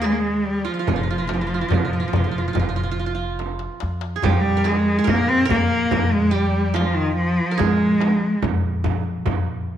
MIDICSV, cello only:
0, 0, Header, 1, 2, 480
1, 0, Start_track
1, 0, Tempo, 837989
1, 506, Time_signature, 4, 2, 24, 8
1, 5600, End_track
2, 0, Start_track
2, 0, Title_t, "Cello"
2, 0, Program_c, 0, 42
2, 29, Note_on_c, 0, 56, 84
2, 68, Note_on_c, 0, 58, 67
2, 76, Note_off_c, 0, 56, 0
2, 113, Note_on_c, 0, 56, 79
2, 122, Note_off_c, 0, 58, 0
2, 269, Note_on_c, 0, 55, 83
2, 278, Note_off_c, 0, 56, 0
2, 385, Note_on_c, 0, 53, 76
2, 394, Note_off_c, 0, 55, 0
2, 1947, Note_off_c, 0, 53, 0
2, 2435, Note_on_c, 0, 55, 97
2, 2458, Note_on_c, 0, 53, 84
2, 2467, Note_off_c, 0, 55, 0
2, 2521, Note_on_c, 0, 55, 94
2, 2530, Note_off_c, 0, 53, 0
2, 2681, Note_on_c, 0, 56, 86
2, 2690, Note_off_c, 0, 55, 0
2, 2923, Note_on_c, 0, 58, 94
2, 2931, Note_off_c, 0, 56, 0
2, 3036, Note_on_c, 0, 60, 104
2, 3044, Note_off_c, 0, 58, 0
2, 3148, Note_off_c, 0, 60, 0
2, 3152, Note_on_c, 0, 58, 93
2, 3515, Note_on_c, 0, 56, 93
2, 3524, Note_off_c, 0, 58, 0
2, 3633, Note_on_c, 0, 55, 83
2, 3642, Note_off_c, 0, 56, 0
2, 3863, Note_on_c, 0, 53, 86
2, 3872, Note_off_c, 0, 55, 0
2, 3901, Note_on_c, 0, 55, 72
2, 3910, Note_off_c, 0, 53, 0
2, 3924, Note_on_c, 0, 53, 87
2, 3932, Note_off_c, 0, 55, 0
2, 3986, Note_on_c, 0, 51, 85
2, 3995, Note_off_c, 0, 53, 0
2, 4098, Note_off_c, 0, 51, 0
2, 4101, Note_on_c, 0, 53, 90
2, 4347, Note_on_c, 0, 56, 87
2, 4355, Note_off_c, 0, 53, 0
2, 4827, Note_off_c, 0, 56, 0
2, 5600, End_track
0, 0, End_of_file